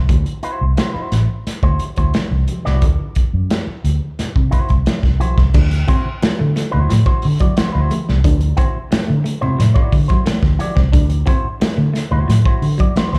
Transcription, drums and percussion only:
0.09 kick, closed hi-hat, muted conga
0.26 closed hi-hat
0.43 closed hi-hat
0.77 snare, closed hi-hat, high conga
1.12 snare, closed hi-hat, muted conga
1.47 snare, closed hi-hat
1.63 kick
1.79 closed hi-hat, muted conga
1.96 kick, closed hi-hat
2.14 snare, closed hi-hat, high conga
2.48 closed hi-hat, high conga
2.66 snare
2.82 kick, closed hi-hat, muted conga
3.15 kick, closed hi-hat
3.50 snare, closed hi-hat, high conga
3.85 closed hi-hat, muted conga
4.19 snare, closed hi-hat, low conga
4.36 kick
4.52 kick, closed hi-hat, muted conga
4.68 kick, closed hi-hat
4.86 snare, closed hi-hat, high conga
5.03 kick, snare
5.21 closed hi-hat, high conga
5.38 kick, snare
5.54 kick, crash, muted conga
5.71 closed hi-hat
5.88 kick, closed hi-hat
6.22 snare, closed hi-hat, high conga
6.56 snare, closed hi-hat, muted conga
6.73 low conga
6.90 snare, closed hi-hat
7.06 kick
7.22 open hi-hat, muted conga
7.39 kick, closed hi-hat
7.57 snare, closed hi-hat, high conga
7.90 closed hi-hat, high conga
8.09 snare
8.24 kick, closed hi-hat, muted conga
8.40 closed hi-hat
8.57 kick, closed hi-hat
8.92 snare, closed hi-hat, high conga
9.25 closed hi-hat, muted conga
9.43 low conga
9.60 snare, closed hi-hat, low conga
9.76 kick
9.92 kick, open hi-hat, muted conga
10.09 kick, closed hi-hat
10.26 snare, closed hi-hat, high conga
10.43 kick, snare
10.60 closed hi-hat, high conga
10.77 kick, snare
10.93 kick, closed hi-hat, muted conga
11.10 closed hi-hat
11.26 kick, closed hi-hat
11.61 snare, closed hi-hat, high conga
11.95 snare, closed hi-hat, muted conga
12.12 low conga
12.30 snare, closed hi-hat
12.46 kick
12.62 open hi-hat, muted conga
12.79 kick, closed hi-hat
12.96 snare, closed hi-hat, high conga
13.14 snare

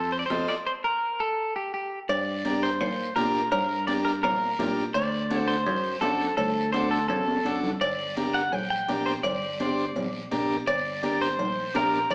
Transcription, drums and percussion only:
0.30 high conga, high timbale, low timbale, short guiro
0.48 high timbale, short guiro
2.09 cowbell, long guiro
2.45 cowbell, high conga, short guiro
2.63 short guiro
2.80 cowbell, low conga, long guiro
3.16 cowbell, high conga, short guiro
3.34 short guiro
3.52 cowbell, low conga, long guiro
3.88 cowbell, high conga, short guiro
4.06 short guiro
4.23 cowbell, high conga, low conga, long guiro
4.59 cowbell, high conga, low conga, low timbale, short guiro
4.77 short guiro
4.95 cowbell, long guiro
5.31 cowbell, high conga, short guiro
5.48 short guiro
5.66 cowbell, low conga, long guiro
6.02 cowbell, high conga, low timbale, short guiro
6.20 short guiro
6.38 cowbell, low conga, long guiro
6.74 cowbell, high conga, short guiro
6.92 short guiro
7.10 cowbell, high conga, low conga, long guiro
7.28 high conga
7.46 cowbell, high conga, short guiro
7.63 low conga, short guiro
7.81 cowbell, long guiro
8.16 cowbell, high conga, short guiro
8.35 short guiro
8.53 cowbell, low conga, long guiro
8.88 cowbell, high conga, low timbale, short guiro
9.06 short guiro
9.24 cowbell, low conga, long guiro
9.60 cowbell, high conga, short guiro
9.78 short guiro
9.96 cowbell, high conga, low conga, long guiro
10.31 cowbell, high conga, short guiro
10.50 short guiro
10.67 cowbell, long guiro
11.03 cowbell, high conga, short guiro
11.21 short guiro
11.39 cowbell, low conga, long guiro
11.75 cowbell, high conga, low timbale, short guiro
11.93 short guiro
12.10 cowbell, low conga, long guiro

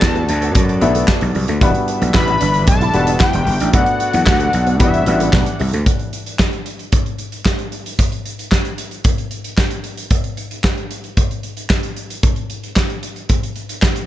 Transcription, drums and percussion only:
0.02 kick, snare, clap
0.16 closed hi-hat
0.29 closed hi-hat
0.42 closed hi-hat
0.55 kick, closed hi-hat
0.69 closed hi-hat
0.81 closed hi-hat
0.95 closed hi-hat
1.08 kick, snare, clap
1.21 closed hi-hat
1.35 open hi-hat
1.48 closed hi-hat
1.61 kick, closed hi-hat
1.75 closed hi-hat
1.88 closed hi-hat
2.02 closed hi-hat
2.14 kick, snare, clap
2.28 closed hi-hat
2.41 closed hi-hat
2.54 closed hi-hat
2.67 kick, closed hi-hat
2.81 closed hi-hat
2.94 closed hi-hat
3.07 closed hi-hat
3.20 kick, snare, clap
3.33 closed hi-hat
3.47 open hi-hat
3.60 closed hi-hat
3.73 kick, closed hi-hat
3.86 closed hi-hat
4.00 closed hi-hat
4.13 closed hi-hat
4.27 kick, snare, clap
4.40 closed hi-hat
4.53 closed hi-hat
4.67 closed hi-hat
4.80 kick, closed hi-hat
4.94 closed hi-hat
5.06 closed hi-hat
5.20 closed hi-hat
5.33 kick, snare, clap
5.46 closed hi-hat
5.59 open hi-hat
5.73 closed hi-hat
5.86 kick, closed hi-hat
5.99 closed hi-hat
6.13 closed hi-hat
6.26 closed hi-hat
6.39 kick, snare, clap
6.53 closed hi-hat
6.66 closed hi-hat
6.79 closed hi-hat
6.92 kick, closed hi-hat
7.06 closed hi-hat
7.18 closed hi-hat
7.32 closed hi-hat
7.46 kick, snare, clap
7.59 closed hi-hat
7.72 closed hi-hat
7.86 closed hi-hat
7.99 kick, closed hi-hat
8.12 closed hi-hat
8.26 closed hi-hat
8.39 closed hi-hat
8.52 kick, snare, clap
8.65 closed hi-hat
8.78 closed hi-hat
8.91 closed hi-hat
9.04 kick, closed hi-hat
9.18 closed hi-hat
9.31 closed hi-hat
9.44 closed hi-hat
9.58 kick, snare, clap
9.71 closed hi-hat
9.84 closed hi-hat
9.97 closed hi-hat
10.11 kick, closed hi-hat
10.24 closed hi-hat
10.37 closed hi-hat
10.51 closed hi-hat
10.64 kick, snare, clap
10.78 closed hi-hat
10.91 closed hi-hat
11.04 closed hi-hat
11.17 kick, closed hi-hat
11.31 closed hi-hat
11.43 closed hi-hat
11.57 closed hi-hat
11.70 kick, snare, clap
11.83 closed hi-hat
11.96 closed hi-hat
12.10 closed hi-hat
12.23 kick, closed hi-hat
12.36 closed hi-hat
12.50 closed hi-hat
12.63 closed hi-hat
12.76 kick, snare, clap
12.90 closed hi-hat
13.03 closed hi-hat
13.16 closed hi-hat
13.29 kick, closed hi-hat
13.43 closed hi-hat
13.56 closed hi-hat
13.69 closed hi-hat
13.82 kick, snare, clap
13.96 closed hi-hat

